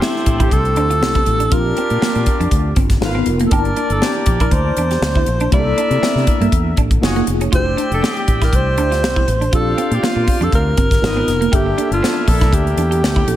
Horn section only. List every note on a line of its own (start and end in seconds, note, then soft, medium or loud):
0.00 1.23 C4 medium
0.00 1.23 G4 medium
0.00 1.23 A4 medium
0.00 1.23 C5 medium
1.51 2.74 D4 medium
1.51 2.74 F4 medium
1.51 2.74 G4 medium
1.51 2.74 D5 medium
3.02 3.26 F4 medium
3.02 3.26 B4 medium
3.02 3.26 F5 medium
3.51 5.23 D4 medium
3.51 5.23 A#4 medium
3.51 5.23 D5 medium
5.52 6.75 E4 medium
5.52 6.75 A#4 medium
5.52 6.75 E5 medium
7.02 7.27 F#4 medium
7.02 7.27 C#5 medium
7.02 7.27 D#5 medium
7.02 7.27 F#5 medium
7.53 9.24 G4 medium
7.53 9.24 D5 medium
7.53 9.24 E5 medium
7.53 9.24 G5 medium
9.53 10.75 F4 medium
9.53 10.75 C5 medium
9.53 10.75 D5 medium
9.53 10.75 F5 medium
11.03 11.27 D#4 medium
11.03 11.27 B4 medium
11.03 11.27 D#5 medium
11.53 13.24 D4 medium
11.53 13.24 E4 medium
11.53 13.24 A#4 medium
11.53 13.24 E5 medium